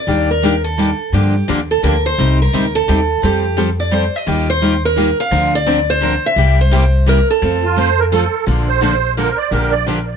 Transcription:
Already playing: steel-string acoustic guitar D5
0.07 upright bass D#2, steel-string acoustic guitar D#3 G3 A#3 D4 G4
0.31 steel-string acoustic guitar A#4
0.42 steel-string acoustic guitar D#3 G3 A#3 D4 G4
0.64 steel-string acoustic guitar A4
0.77 steel-string acoustic guitar D#3 G3 A#3 D4 G4
1.13 upright bass G2, steel-string acoustic guitar D3 F3 A#3 D4 G4
1.49 upright bass D#2, steel-string acoustic guitar D3 F3 A#3 D4 G4
1.71 steel-string acoustic guitar A4
1.83 upright bass D2, steel-string acoustic guitar D3 F3 A#3 D4 G4 A#4
2.06 steel-string acoustic guitar C5
2.18 upright bass C2, steel-string acoustic guitar C3 G3 C4 D#4 G4
2.42 steel-string acoustic guitar A#4
2.52 upright bass D2, steel-string acoustic guitar C3 G3 C4 D#4 G4
2.75 steel-string acoustic guitar A4
2.88 upright bass D#2, steel-string acoustic guitar C3 G3 C4 D#4 G4
3.23 upright bass F2, steel-string acoustic guitar F3 G3 C4 G4 A4
3.57 steel-string acoustic guitar F3 G3 C4 G4 A4
3.80 steel-string acoustic guitar D5
3.91 steel-string acoustic guitar F3 G3 C4 G4 A4 C5
4.16 steel-string acoustic guitar D#5
4.27 upright bass D#2, steel-string acoustic guitar D#3 G3 A#3 F4 G4
4.50 steel-string acoustic guitar C5
4.61 steel-string acoustic guitar D#3 G3 A#3 F4 G4
4.85 steel-string acoustic guitar A#4
4.95 steel-string acoustic guitar D#3 G3 A#3 F4 G4
5.20 steel-string acoustic guitar F5
5.31 upright bass D2, steel-string acoustic guitar D3 F3 C4 D4 A#4
5.55 steel-string acoustic guitar D5
5.67 steel-string acoustic guitar D3 F3 C4 D4 A#4
5.90 steel-string acoustic guitar C5
6.02 steel-string acoustic guitar D3 F3 C4 D4 A#4
6.26 steel-string acoustic guitar E5
6.36 upright bass C2, steel-string acoustic guitar C3 G3 A#3 E4 G4
6.61 steel-string acoustic guitar C5
6.73 steel-string acoustic guitar C3 G3 A#3 E4 G4
7.07 steel-string acoustic guitar C3 G3 A#3 E4 G4 A#4
7.30 steel-string acoustic guitar A4
7.42 upright bass F2, steel-string acoustic guitar F3 A3 C4 F4 A4
7.64 accordion F4
7.76 steel-string acoustic guitar F3 A3 C4 F4 A4, accordion C5
7.99 accordion A#4
8.12 steel-string acoustic guitar F3 A3 C4 F4 A4, accordion A4
8.47 upright bass A#1, steel-string acoustic guitar D3 F3 A#3 D4 A4
8.69 accordion C5
8.82 steel-string acoustic guitar D3 F3 A#3 D4 A4
9.17 steel-string acoustic guitar D3 F3 A#3 D4 A4, accordion A#4
9.38 accordion D5
9.51 upright bass A#1, steel-string acoustic guitar D3 F3 A#3 D4 G4, accordion A#4
9.71 accordion D5
9.87 steel-string acoustic guitar D3 F3 A#3 D4 G4

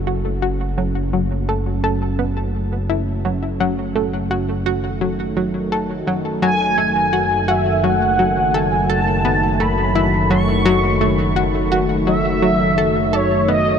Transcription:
Already playing: analog synth bass F#1, analog synth pad F#3 A3 C#4
0.07 synth arpeggio sound F#4
0.42 synth arpeggio sound F#4
0.78 synth arpeggio sound F#3
1.13 synth arpeggio sound F#3
1.49 synth arpeggio sound A4
1.84 synth arpeggio sound A4
2.19 synth arpeggio sound B3
2.90 synth arpeggio sound E4
3.25 synth arpeggio sound F#3
3.60 synth arpeggio sound F#3
3.96 synth arpeggio sound A3
4.31 synth arpeggio sound F#4
4.66 analog synth pad D#3, synth arpeggio sound F#4
5.01 synth arpeggio sound F#3
5.37 synth arpeggio sound F#3
5.72 synth arpeggio sound A4
6.07 analog synth bass F#1, synth arpeggio sound F#3
6.42 synth arpeggio sound F#3, analog synth lead G#5
6.78 synth arpeggio sound A3
7.13 synth arpeggio sound F#4
7.48 synth arpeggio sound F#4, analog synth lead E5
7.84 synth arpeggio sound F#3, analog synth lead F#5
8.19 synth arpeggio sound F#3
8.54 synth arpeggio sound A4, analog synth lead G#5
8.89 synth arpeggio sound A4, analog synth lead A5
9.25 synth arpeggio sound B3
9.60 synth arpeggio sound A3, analog synth lead B5
9.95 synth arpeggio sound E4
10.30 synth arpeggio sound F#3, analog synth lead C#6
10.65 synth arpeggio sound F#3
11.01 synth arpeggio sound A3
11.36 synth arpeggio sound F#4
11.72 synth arpeggio sound F#4
12.07 synth arpeggio sound F#3, analog synth lead E5
12.42 synth arpeggio sound F#3
12.78 synth arpeggio sound A4
13.13 synth arpeggio sound A4, analog synth lead C#5
13.48 synth arpeggio sound B3, analog synth lead D#5

